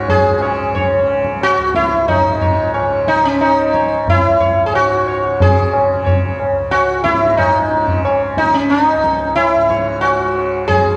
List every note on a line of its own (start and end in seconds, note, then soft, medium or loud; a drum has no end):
0.00 1.57 C#2 medium
0.00 2.18 G#2 medium
0.00 0.33 C#3 medium
0.08 1.05 G#4 medium
0.08 tabla tin medium
0.08 tabla ge medium
0.33 0.94 C#3 medium
0.41 0.73 C#5 soft
0.41 tabla na medium
0.75 1.06 C#5 soft
0.75 tabla tin medium
0.75 tabla ge medium
0.94 2.81 C#3 medium
1.08 tabla na medium
1.24 tabla ke medium
1.41 1.75 F#4 loud
1.41 tabla na medium
1.58 4.04 C#2 medium
1.75 2.08 E4 medium
1.75 tabla ke medium
1.91 tabla te medium
2.08 2.70 D#4 medium
2.08 tabla na medium
2.08 tabla ge medium
2.19 4.65 G#2 medium
2.41 2.72 C#5 soft
2.41 tabla ge medium
2.74 3.05 C#5 soft
2.74 tabla na medium
2.81 3.42 C#3 soft
3.08 3.25 D#4 medium
3.08 tabla ke medium
3.25 3.40 C#4 medium
3.41 5.27 C#3 medium
3.41 4.09 D#4 medium
3.41 tabla na medium
3.74 4.05 C#5 soft
3.74 tabla ke medium
4.04 6.50 C#2 medium
4.04 tabla na medium
4.04 tabla ge medium
4.09 4.66 E4 medium
4.40 4.71 C#5 soft
4.40 tabla ge soft
4.66 7.11 G#2 medium
4.66 4.73 G#4 medium
4.74 5.42 F#4 medium
4.74 tabla na medium
5.07 5.38 C#5 soft
5.07 tabla na medium
5.27 5.89 C#3 medium
5.40 6.36 G#4 medium
5.40 tabla tin medium
5.40 tabla ge medium
5.74 tabla na medium
5.89 7.73 C#3 medium
6.06 6.37 C#5 soft
6.06 tabla tin medium
6.06 tabla ge medium
6.40 tabla na medium
6.51 8.95 C#2 medium
6.71 7.03 F#4 medium
6.71 tabla na medium
7.04 7.37 E4 medium
7.04 tabla ke medium
7.12 9.56 G#2 medium
7.22 tabla te medium
7.37 8.00 D#4 medium
7.37 tabla na medium
7.37 tabla ge medium
7.72 8.35 C#3 medium
7.72 tabla te medium
7.88 tabla ge soft
8.05 8.35 C#5 soft
8.05 tabla na medium
8.35 10.20 C#3 medium
8.35 8.55 D#4 medium
8.35 tabla ke medium
8.54 8.71 C#4 medium
8.70 9.35 D#4 medium
8.70 tabla te medium
8.87 tabla te medium
8.96 10.96 C#2 medium
9.04 tabla ke medium
9.21 tabla te medium
9.36 10.01 E4 medium
9.36 tabla na medium
9.56 10.96 G#2 soft
9.70 10.00 C#5 soft
9.70 tabla ke medium
10.01 10.67 F#4 medium
10.01 tabla na medium
10.20 10.81 C#3 medium
10.36 tabla na medium
10.68 10.96 G#4 medium
10.68 tabla tin medium
10.68 tabla ge medium
10.81 10.96 C#3 medium